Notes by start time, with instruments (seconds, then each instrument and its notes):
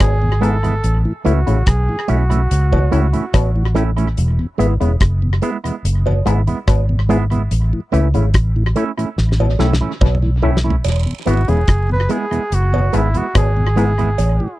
0.00 fingered electric bass G#1, clav B2, flugelhorn G#4, kick, cross-stick, closed hi-hat, cowbell
0.22 tonewheel organ E2 B2
0.41 clav G#2, clean electric guitar G#3 B3 E4, tonewheel organ G#3 B3 E4, flugelhorn A4, closed hi-hat
0.63 tonewheel organ E2 B2, clean electric guitar G#3 B3 E4, closed hi-hat
0.84 fingered electric bass A1, closed hi-hat
1.05 tonewheel organ A2 E3
1.25 fingered electric bass C#2, clav E3, clean electric guitar A3 C#4 E4, tonewheel organ A3 C#4 E4, flugelhorn F#4, closed hi-hat
1.46 fingered electric bass A1, tonewheel organ A2 E3, clav C#3, clean electric guitar A3 C#4 E4, closed hi-hat
1.66 fingered electric bass B1, flugelhorn G#4, kick, cross-stick, closed hi-hat
1.89 tonewheel organ A2 E3
2.08 fingered electric bass B1, clean electric guitar A3 C#4 E4, tonewheel organ A3 C#4 E4, flugelhorn F#4, closed hi-hat
2.30 tonewheel organ A2 E3, clean electric guitar A3 C#4 E4, closed hi-hat
2.51 fingered electric bass C#2, closed hi-hat
2.72 tonewheel organ A2 E3, clav B2, kick, cowbell
2.91 fingered electric bass C#2, clav A2, clean electric guitar A3 C#4 E4, tonewheel organ A3 C#4 E4, closed hi-hat
3.13 tonewheel organ A2 E3, clean electric guitar A3 C#4 E4, closed hi-hat
3.34 fingered electric bass A1, clav B2, kick, cross-stick, closed hi-hat, cowbell
3.56 tonewheel organ A2 E3
3.75 clav A2, clean electric guitar A3 C#4 E4, tonewheel organ A3 C#4 E4, cross-stick, closed hi-hat
3.96 tonewheel organ A2 E3, clean electric guitar A3 C#4 E4, closed hi-hat
4.17 fingered electric bass E1, closed hi-hat
4.39 tonewheel organ E2 B2
4.58 fingered electric bass G#1, clav E3, clean electric guitar G#3 B3 E4, tonewheel organ G#3 B3 E4, closed hi-hat
4.80 fingered electric bass E1, tonewheel organ E2 B2, clav C#3, clean electric guitar G#3 B3 E4, closed hi-hat
5.00 fingered electric bass F#1, kick, cross-stick, closed hi-hat
5.22 tonewheel organ E2 B2
5.42 tonewheel organ G#3 B3 E4, clean electric guitar G#3 B3 E4, closed hi-hat
5.64 tonewheel organ E2 B2, clean electric guitar G#3 B3 E4, closed hi-hat
5.85 fingered electric bass F#1, closed hi-hat
6.06 tonewheel organ E2 B2, clav B2, cowbell
6.26 fingered electric bass G#1, clav G#2, tonewheel organ G#3 B3 E4, clean electric guitar G#3 B3 E4, closed hi-hat
6.47 tonewheel organ E2 B2, clean electric guitar G#3 B3 E4, closed hi-hat
6.67 fingered electric bass G#1, clav B2, kick, cross-stick, closed hi-hat, cowbell
6.89 tonewheel organ E2 B2
7.09 clav G#2, clean electric guitar G#3 B3 E4, tonewheel organ G#3 B3 E4, closed hi-hat
7.31 tonewheel organ E2 B2, clean electric guitar G#3 B3 E4, closed hi-hat
7.51 fingered electric bass A1, closed hi-hat
7.73 tonewheel organ A2 E3
7.92 fingered electric bass C#2, clav E3, clean electric guitar A3 C#4 E4, tonewheel organ A3 C#4 E4, closed hi-hat
8.14 fingered electric bass G#1, tonewheel organ A2 E3, clav C#3, clean electric guitar A3 C#4 E4, closed hi-hat
8.34 fingered electric bass A1, kick, cross-stick, closed hi-hat
8.56 tonewheel organ A2 E3
8.76 clean electric guitar A3 C#4 E4, tonewheel organ A3 C#4 E4, closed hi-hat
8.97 tonewheel organ A2 E3, clean electric guitar A3 C#4 E4, closed hi-hat
9.18 fingered electric bass A1, snare
9.32 snare
9.40 tonewheel organ A2 E3, clav B2, cowbell
9.59 fingered electric bass B1, clav A2, clean electric guitar A3 C#4 E4, tonewheel organ A3 C#4 E4, snare
9.73 snare
9.81 tonewheel organ A2 E3, clean electric guitar A3 C#4 E4
10.01 fingered electric bass B1, clav B2, kick, mid tom, cowbell
10.15 mid tom
10.22 tonewheel organ A2 E3
10.42 clav A2, tonewheel organ A3 C#4 E4, clean electric guitar A3 C#4 E4, floor tom
10.57 snare
10.64 tonewheel organ A2 E3, clean electric guitar A3 C#4 E4
10.70 floor tom
10.84 fingered electric bass E1, closed hi-hat, cowbell, vibraslap
11.06 tonewheel organ E2 B2
11.25 fingered electric bass G#1, clav E3, tonewheel organ G#3 B3 E4, clean electric guitar G#3 B3 E4, flugelhorn F#4, closed hi-hat
11.48 fingered electric bass E1, tonewheel organ E2 B2, clav C#3, clean electric guitar G#3 B3 E4, flugelhorn G#4, closed hi-hat
11.68 fingered electric bass F#1, kick, cross-stick, closed hi-hat
11.90 tonewheel organ E2 B2, flugelhorn B4
12.09 tonewheel organ G#3 B3 E4, clean electric guitar G#3 B3 E4, flugelhorn G#4, closed hi-hat
12.31 tonewheel organ E2 B2, clean electric guitar G#3 B3 E4, closed hi-hat
12.52 fingered electric bass F#1, flugelhorn F#4, closed hi-hat
12.73 tonewheel organ E2 B2, clav B2, cowbell
12.92 fingered electric bass G#1, clav G#2, tonewheel organ G#3 B3 E4, clean electric guitar G#3 B3 E4, flugelhorn E4, closed hi-hat
13.14 tonewheel organ E2 B2, clean electric guitar G#3 B3 E4, flugelhorn F#4, closed hi-hat
13.35 fingered electric bass G#1, clav B2, flugelhorn G#4, kick, cross-stick, closed hi-hat, cowbell
13.57 tonewheel organ E2 B2
13.76 clav G#2, tonewheel organ G#3 B3 E4, clean electric guitar G#3 B3 E4, closed hi-hat
13.98 tonewheel organ E2 B2, clean electric guitar G#3 B3 E4, closed hi-hat
14.18 fingered electric bass A1, closed hi-hat, cowbell
14.40 tonewheel organ A2 E3